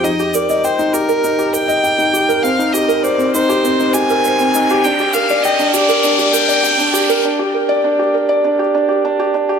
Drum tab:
SH |xxxxxxxxxxxxxxxx|xxxxxxxxxxxxxxxx|xxxxxxxxxxxxxxxx|----------------|